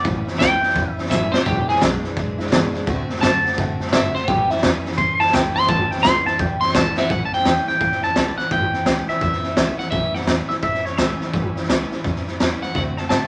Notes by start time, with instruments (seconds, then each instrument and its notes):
0.03 upright bass A1, steel-string acoustic guitar A2 E3 G3 C#4 E4, kick, snare
0.25 steel-string acoustic guitar G3 C#4 E4, muted upright bass stroke, snare
0.34 snare
0.38 upright bass C#2, steel-string acoustic guitar A2 E3 G3 C#4 E4, clean electric guitar G5, kick, snare, hi-hat pedal
0.61 steel-string acoustic guitar G3 C#4 E4, muted upright bass stroke, snare
0.70 snare
0.74 upright bass E2, steel-string acoustic guitar E3 G3 C#4 E4, kick, snare
0.92 clean electric guitar E5
0.97 steel-string acoustic guitar G3 C#4 E4, muted upright bass stroke, snare
1.05 snare
1.10 upright bass F#1, steel-string acoustic guitar A2 E3 G3 C#4 E4, clean electric guitar E5, kick, snare, hi-hat pedal
1.32 steel-string acoustic guitar G3 C#4 E4, clean electric guitar C5, muted upright bass stroke, snare
1.45 upright bass E1, steel-string acoustic guitar E2 B2 E3 G#3 D4 E4, clean electric guitar G4, kick, snare
1.68 steel-string acoustic guitar E3 G#3 D4 E4, clean electric guitar G#4, muted upright bass stroke, snare
1.76 snare
1.81 upright bass B1, steel-string acoustic guitar E2 B2 E3 G#3 D4 E4, kick, snare, hi-hat pedal
2.03 steel-string acoustic guitar E3 G#3 D4 E4, muted upright bass stroke, snare
2.16 upright bass B1, steel-string acoustic guitar E3 G#3 D4 E4, kick, snare
2.38 upright bass B1, steel-string acoustic guitar E3 G#3 D4 E4, snare
2.46 snare
2.51 upright bass G#1, steel-string acoustic guitar E2 B2 E3 G#3 D4 E4, kick, snare, hi-hat pedal
2.73 steel-string acoustic guitar E3 G#3 D4 E4, muted upright bass stroke, snare
2.86 upright bass D2, steel-string acoustic guitar D3 A3 C4 F#4, kick, snare
3.08 steel-string acoustic guitar A3 C4 F#4, muted upright bass stroke, snare
3.16 snare
3.21 upright bass F#2, steel-string acoustic guitar D3 A3 C4 F#4, clean electric guitar A5, kick, snare, hi-hat pedal
3.44 steel-string acoustic guitar A3 C4 F#4, muted upright bass stroke, snare
3.52 snare
3.57 upright bass A2, steel-string acoustic guitar D3 A3 C4 F#4, kick, snare
3.80 steel-string acoustic guitar A3 C4 F#4, muted upright bass stroke, snare
3.87 snare
3.92 upright bass G1, steel-string acoustic guitar D3 A3 C4 F#4, clean electric guitar E5, kick, snare, hi-hat pedal
4.15 steel-string acoustic guitar A3 C4 F#4, clean electric guitar C5, muted upright bass stroke, snare
4.28 upright bass A1, steel-string acoustic guitar A2 E3 G3 C#4 E4, clean electric guitar G4, kick, snare
4.50 steel-string acoustic guitar G3 C#4 E4, clean electric guitar E4, muted upright bass stroke, snare
4.57 snare
4.63 upright bass E2, steel-string acoustic guitar A2 E3 G3 C#4 E4, kick, snare, hi-hat pedal
4.85 steel-string acoustic guitar G3 C#4 E4, muted upright bass stroke, snare
4.92 snare
4.98 upright bass E2, steel-string acoustic guitar E3 G3 C#4 E4, clean electric guitar C6, kick, snare
5.20 upright bass E2, steel-string acoustic guitar G3 C#4 E4, clean electric guitar A5, snare
5.27 snare
5.33 upright bass C#2, steel-string acoustic guitar A2 E3 G3 C#4 E4, clean electric guitar G5, kick, snare, hi-hat pedal
5.55 steel-string acoustic guitar G3 C#4 E4, clean electric guitar C6, muted upright bass stroke, snare
5.62 snare
5.68 upright bass G1, steel-string acoustic guitar A2 E3 G3 C#4 E4, clean electric guitar A5, kick, snare
5.90 steel-string acoustic guitar G3 C#4 E4, clean electric guitar G5, muted upright bass stroke, snare
5.98 snare
6.03 upright bass C#2, steel-string acoustic guitar A2 E3 G3 C#4 E4, clean electric guitar C6, kick, snare, hi-hat pedal
6.25 steel-string acoustic guitar G3 C#4 E4, clean electric guitar A5, muted upright bass stroke, snare
6.38 upright bass E2, steel-string acoustic guitar E3 G3 C#4 E4, clean electric guitar G5, kick, snare
6.61 steel-string acoustic guitar G3 C#4 E4, clean electric guitar C6, muted upright bass stroke, snare
6.69 snare
6.74 upright bass C#2, steel-string acoustic guitar A2 E3 G3 C#4 E4, clean electric guitar A5, kick, snare, hi-hat pedal
6.97 steel-string acoustic guitar G3 C#4 E4, clean electric guitar E5 F#5, muted upright bass stroke, snare
7.09 upright bass A1, steel-string acoustic guitar A2 E3 G3 C#4 E4, clean electric guitar F#5, kick, snare
7.25 clean electric guitar A5
7.32 steel-string acoustic guitar G3 C#4 E4, clean electric guitar G5, muted upright bass stroke, snare
7.39 snare
7.45 upright bass E2, steel-string acoustic guitar A2 E3 G3 C#4 E4, snare, hi-hat pedal
7.67 steel-string acoustic guitar G3 C#4 E4, clean electric guitar G5, muted upright bass stroke, snare
7.80 upright bass E2, steel-string acoustic guitar E3 G3 C#4 E4, kick, snare
7.92 snare
8.02 upright bass E2, steel-string acoustic guitar G3 C#4 E4, clean electric guitar A5, snare
8.15 upright bass C#2, steel-string acoustic guitar A2 E3 G3 C#4 E4, snare, hi-hat pedal
8.38 steel-string acoustic guitar G3 C#4 E4, clean electric guitar F#5, muted upright bass stroke, snare
8.50 upright bass G1, steel-string acoustic guitar A2 E3 G3 C#4 E4, clean electric guitar G5, kick, snare
8.72 steel-string acoustic guitar G3 C#4 E4, muted upright bass stroke, snare
8.85 upright bass C#2, steel-string acoustic guitar A2 E3 G3 C#4 E4, snare, hi-hat pedal
9.07 steel-string acoustic guitar G3 C#4 E4, clean electric guitar E5, muted upright bass stroke, snare
9.21 upright bass E2, steel-string acoustic guitar E3 G3 C#4 E4, clean electric guitar E5, kick, snare
9.33 snare
9.42 steel-string acoustic guitar G3 C#4 E4, muted upright bass stroke, snare
9.56 upright bass C#2, steel-string acoustic guitar A2 E3 G3 C#4 E4, snare, hi-hat pedal
9.78 steel-string acoustic guitar G3 C#4 E4, clean electric guitar F#5, muted upright bass stroke, snare
9.91 upright bass A1, steel-string acoustic guitar A2 E3 G3 C#4 E4, clean electric guitar E5, kick, snare
10.13 steel-string acoustic guitar G3 C#4 E4, clean electric guitar F#5, muted upright bass stroke, snare
10.21 snare
10.26 upright bass E2, steel-string acoustic guitar A2 E3 G3 C#4 E4, snare, hi-hat pedal
10.49 steel-string acoustic guitar G3 C#4 E4, clean electric guitar E5, muted upright bass stroke, snare
10.61 steel-string acoustic guitar E3 G3 C#4 E4, clean electric guitar E5, kick, snare
10.74 snare
10.84 upright bass E2, steel-string acoustic guitar G3 C#4 E4, clean electric guitar C#5, snare
10.98 upright bass C#2, steel-string acoustic guitar A2 E3 G3 C#4 E4, clean electric guitar E5, snare, hi-hat pedal
11.20 steel-string acoustic guitar G3 C#4 E4, muted upright bass stroke, snare
11.33 upright bass G1, steel-string acoustic guitar A2 E3 G3 C#4 E4, kick, snare
11.55 steel-string acoustic guitar G3 C#4 E4, muted upright bass stroke, snare
11.63 snare
11.69 upright bass C#2, steel-string acoustic guitar A2 E3 G3 C#4 E4, snare, hi-hat pedal
11.91 steel-string acoustic guitar G3 C#4 E4, muted upright bass stroke, snare
12.04 upright bass E2, steel-string acoustic guitar E3 G3 C#4 E4, kick, snare
12.16 snare
12.27 steel-string acoustic guitar G3 C#4 E4, snare
12.40 upright bass E2, steel-string acoustic guitar A2 E3 G3 C#4 E4, snare, hi-hat pedal
12.62 steel-string acoustic guitar G3 C#4 E4, clean electric guitar F#5, muted upright bass stroke, snare
12.75 upright bass D2, steel-string acoustic guitar D3 A3 C4 F#4, clean electric guitar F#5, kick, snare
12.97 steel-string acoustic guitar C4 F#4, clean electric guitar A5, muted upright bass stroke, snare
13.01 steel-string acoustic guitar A3
13.09 upright bass A2, steel-string acoustic guitar D3 A3 C4 F#4, clean electric guitar A5, snare, hi-hat pedal